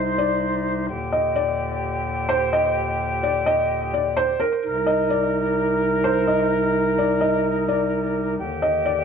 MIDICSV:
0, 0, Header, 1, 3, 480
1, 0, Start_track
1, 0, Key_signature, -3, "minor"
1, 0, Tempo, 468750
1, 905, Time_signature, 4, 2, 24, 8
1, 9260, End_track
2, 0, Start_track
2, 0, Title_t, "Felt piano"
2, 0, Program_c, 0, 0
2, 0, Note_on_c, 0, 75, 75
2, 154, Note_off_c, 0, 75, 0
2, 187, Note_on_c, 0, 74, 83
2, 865, Note_off_c, 0, 74, 0
2, 1152, Note_on_c, 0, 75, 75
2, 1377, Note_off_c, 0, 75, 0
2, 1389, Note_on_c, 0, 74, 87
2, 2306, Note_off_c, 0, 74, 0
2, 2343, Note_on_c, 0, 72, 96
2, 2572, Note_off_c, 0, 72, 0
2, 2590, Note_on_c, 0, 75, 95
2, 2816, Note_off_c, 0, 75, 0
2, 3310, Note_on_c, 0, 74, 84
2, 3536, Note_off_c, 0, 74, 0
2, 3546, Note_on_c, 0, 75, 91
2, 3997, Note_off_c, 0, 75, 0
2, 4030, Note_on_c, 0, 74, 84
2, 4256, Note_off_c, 0, 74, 0
2, 4266, Note_on_c, 0, 72, 95
2, 4494, Note_off_c, 0, 72, 0
2, 4502, Note_on_c, 0, 70, 80
2, 4731, Note_off_c, 0, 70, 0
2, 4982, Note_on_c, 0, 75, 81
2, 5212, Note_off_c, 0, 75, 0
2, 5223, Note_on_c, 0, 74, 78
2, 6143, Note_off_c, 0, 74, 0
2, 6186, Note_on_c, 0, 72, 86
2, 6414, Note_off_c, 0, 72, 0
2, 6425, Note_on_c, 0, 75, 71
2, 6653, Note_off_c, 0, 75, 0
2, 7150, Note_on_c, 0, 74, 79
2, 7376, Note_off_c, 0, 74, 0
2, 7382, Note_on_c, 0, 75, 79
2, 7835, Note_off_c, 0, 75, 0
2, 7867, Note_on_c, 0, 74, 81
2, 8545, Note_off_c, 0, 74, 0
2, 8830, Note_on_c, 0, 75, 81
2, 9056, Note_off_c, 0, 75, 0
2, 9068, Note_on_c, 0, 74, 85
2, 9260, Note_off_c, 0, 74, 0
2, 9260, End_track
3, 0, Start_track
3, 0, Title_t, "Woodwind section"
3, 0, Program_c, 1, 71
3, 0, Note_on_c, 1, 36, 82
3, 0, Note_on_c, 1, 48, 74
3, 0, Note_on_c, 1, 63, 74
3, 0, Note_on_c, 1, 72, 91
3, 867, Note_off_c, 1, 36, 0
3, 868, Note_off_c, 1, 48, 0
3, 868, Note_off_c, 1, 63, 0
3, 886, Note_off_c, 1, 72, 0
3, 903, Note_on_c, 1, 39, 81
3, 903, Note_on_c, 1, 46, 75
3, 903, Note_on_c, 1, 67, 87
3, 904, Note_on_c, 1, 50, 76
3, 4571, Note_off_c, 1, 39, 0
3, 4571, Note_off_c, 1, 46, 0
3, 4571, Note_off_c, 1, 50, 0
3, 4571, Note_off_c, 1, 67, 0
3, 4745, Note_on_c, 1, 36, 81
3, 4745, Note_on_c, 1, 48, 74
3, 4745, Note_on_c, 1, 63, 72
3, 4745, Note_on_c, 1, 70, 91
3, 8547, Note_off_c, 1, 36, 0
3, 8547, Note_off_c, 1, 48, 0
3, 8547, Note_off_c, 1, 63, 0
3, 8547, Note_off_c, 1, 70, 0
3, 8582, Note_on_c, 1, 39, 79
3, 8583, Note_on_c, 1, 51, 72
3, 8583, Note_on_c, 1, 67, 88
3, 8584, Note_on_c, 1, 50, 74
3, 9260, Note_off_c, 1, 39, 0
3, 9260, Note_off_c, 1, 50, 0
3, 9260, Note_off_c, 1, 51, 0
3, 9260, Note_off_c, 1, 67, 0
3, 9260, End_track
0, 0, End_of_file